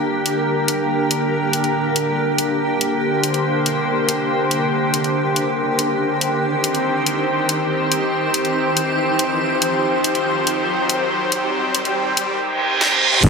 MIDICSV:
0, 0, Header, 1, 8, 480
1, 0, Start_track
1, 0, Tempo, 425532
1, 1489, Time_signature, 4, 2, 24, 8
1, 14995, End_track
2, 0, Start_track
2, 0, Title_t, "Ambient pad"
2, 0, Program_c, 0, 92
2, 0, Note_on_c, 0, 62, 69
2, 0, Note_on_c, 0, 67, 79
2, 0, Note_on_c, 0, 70, 67
2, 0, Note_on_c, 0, 79, 84
2, 7249, Note_off_c, 0, 62, 0
2, 7249, Note_on_c, 0, 63, 91
2, 7840, Note_on_c, 0, 72, 91
2, 7855, Note_off_c, 0, 70, 0
2, 13968, Note_off_c, 0, 79, 0
2, 13969, Note_off_c, 0, 63, 0
2, 13969, Note_off_c, 0, 67, 0
2, 13969, Note_off_c, 0, 72, 0
2, 14995, End_track
3, 0, Start_track
3, 0, Title_t, "Analog synth pad"
3, 0, Program_c, 1, 89
3, 0, Note_on_c, 1, 50, 78
3, 0, Note_on_c, 1, 58, 72
3, 0, Note_on_c, 1, 67, 71
3, 0, Note_on_c, 1, 70, 84
3, 3371, Note_off_c, 1, 70, 0
3, 3408, Note_on_c, 1, 72, 87
3, 7204, Note_off_c, 1, 50, 0
3, 7204, Note_off_c, 1, 58, 0
3, 7210, Note_off_c, 1, 72, 0
3, 7249, Note_on_c, 1, 60, 74
3, 7249, Note_on_c, 1, 72, 87
3, 7250, Note_on_c, 1, 51, 80
3, 14884, Note_off_c, 1, 51, 0
3, 14884, Note_off_c, 1, 60, 0
3, 14884, Note_off_c, 1, 67, 0
3, 14884, Note_off_c, 1, 72, 0
3, 14930, Note_on_c, 1, 50, 80
3, 14930, Note_on_c, 1, 55, 73
3, 14930, Note_on_c, 1, 58, 75
3, 14930, Note_on_c, 1, 67, 92
3, 14995, Note_off_c, 1, 50, 0
3, 14995, Note_off_c, 1, 55, 0
3, 14995, Note_off_c, 1, 58, 0
3, 14995, Note_off_c, 1, 67, 0
3, 14995, End_track
4, 0, Start_track
4, 0, Title_t, "Wobble bass"
4, 0, Program_c, 2, 39
4, 14929, Note_on_c, 2, 31, 100
4, 14995, Note_off_c, 2, 31, 0
4, 14995, End_track
5, 0, Start_track
5, 0, Title_t, "Impact"
5, 0, Program_c, 3, 103
5, 14929, Note_on_c, 3, 60, 77
5, 14995, Note_off_c, 3, 60, 0
5, 14995, End_track
6, 0, Start_track
6, 0, Title_t, "Reverse cymbal"
6, 0, Program_c, 4, 119
6, 13969, Note_on_c, 4, 60, 78
6, 14929, Note_off_c, 4, 60, 0
6, 14995, End_track
7, 0, Start_track
7, 0, Title_t, "Riser"
7, 0, Program_c, 5, 103
7, 0, Note_on_c, 5, 60, 75
7, 13969, Note_off_c, 5, 60, 0
7, 14995, End_track
8, 0, Start_track
8, 0, Title_t, "Drums"
8, 290, Note_on_c, 9, 42, 77
8, 403, Note_off_c, 9, 42, 0
8, 770, Note_on_c, 9, 42, 82
8, 882, Note_off_c, 9, 42, 0
8, 1249, Note_on_c, 9, 42, 83
8, 1362, Note_off_c, 9, 42, 0
8, 1729, Note_on_c, 9, 42, 77
8, 1842, Note_off_c, 9, 42, 0
8, 1850, Note_on_c, 9, 42, 37
8, 1962, Note_off_c, 9, 42, 0
8, 2209, Note_on_c, 9, 42, 78
8, 2322, Note_off_c, 9, 42, 0
8, 2689, Note_on_c, 9, 42, 80
8, 2802, Note_off_c, 9, 42, 0
8, 3169, Note_on_c, 9, 42, 78
8, 3282, Note_off_c, 9, 42, 0
8, 3649, Note_on_c, 9, 42, 76
8, 3762, Note_off_c, 9, 42, 0
8, 3769, Note_on_c, 9, 42, 36
8, 3882, Note_off_c, 9, 42, 0
8, 4129, Note_on_c, 9, 42, 75
8, 4242, Note_off_c, 9, 42, 0
8, 4609, Note_on_c, 9, 42, 81
8, 4722, Note_off_c, 9, 42, 0
8, 5089, Note_on_c, 9, 42, 78
8, 5202, Note_off_c, 9, 42, 0
8, 5569, Note_on_c, 9, 42, 74
8, 5682, Note_off_c, 9, 42, 0
8, 5689, Note_on_c, 9, 42, 36
8, 5802, Note_off_c, 9, 42, 0
8, 6048, Note_on_c, 9, 42, 74
8, 6161, Note_off_c, 9, 42, 0
8, 6529, Note_on_c, 9, 42, 76
8, 6641, Note_off_c, 9, 42, 0
8, 7009, Note_on_c, 9, 42, 75
8, 7122, Note_off_c, 9, 42, 0
8, 7489, Note_on_c, 9, 42, 75
8, 7602, Note_off_c, 9, 42, 0
8, 7609, Note_on_c, 9, 42, 36
8, 7722, Note_off_c, 9, 42, 0
8, 7969, Note_on_c, 9, 42, 74
8, 8082, Note_off_c, 9, 42, 0
8, 8449, Note_on_c, 9, 42, 79
8, 8562, Note_off_c, 9, 42, 0
8, 8929, Note_on_c, 9, 42, 76
8, 9042, Note_off_c, 9, 42, 0
8, 9409, Note_on_c, 9, 42, 79
8, 9522, Note_off_c, 9, 42, 0
8, 9529, Note_on_c, 9, 42, 38
8, 9642, Note_off_c, 9, 42, 0
8, 9889, Note_on_c, 9, 42, 79
8, 10002, Note_off_c, 9, 42, 0
8, 10369, Note_on_c, 9, 42, 84
8, 10482, Note_off_c, 9, 42, 0
8, 10849, Note_on_c, 9, 42, 80
8, 10962, Note_off_c, 9, 42, 0
8, 11329, Note_on_c, 9, 42, 82
8, 11442, Note_off_c, 9, 42, 0
8, 11450, Note_on_c, 9, 42, 38
8, 11562, Note_off_c, 9, 42, 0
8, 11809, Note_on_c, 9, 42, 80
8, 11922, Note_off_c, 9, 42, 0
8, 12289, Note_on_c, 9, 42, 84
8, 12402, Note_off_c, 9, 42, 0
8, 12769, Note_on_c, 9, 42, 85
8, 12882, Note_off_c, 9, 42, 0
8, 13249, Note_on_c, 9, 42, 84
8, 13362, Note_off_c, 9, 42, 0
8, 13369, Note_on_c, 9, 42, 41
8, 13482, Note_off_c, 9, 42, 0
8, 13729, Note_on_c, 9, 42, 84
8, 13842, Note_off_c, 9, 42, 0
8, 14449, Note_on_c, 9, 38, 63
8, 14562, Note_off_c, 9, 38, 0
8, 14569, Note_on_c, 9, 48, 64
8, 14682, Note_off_c, 9, 48, 0
8, 14809, Note_on_c, 9, 45, 87
8, 14922, Note_off_c, 9, 45, 0
8, 14929, Note_on_c, 9, 36, 120
8, 14929, Note_on_c, 9, 49, 107
8, 14995, Note_off_c, 9, 36, 0
8, 14995, Note_off_c, 9, 49, 0
8, 14995, End_track
0, 0, End_of_file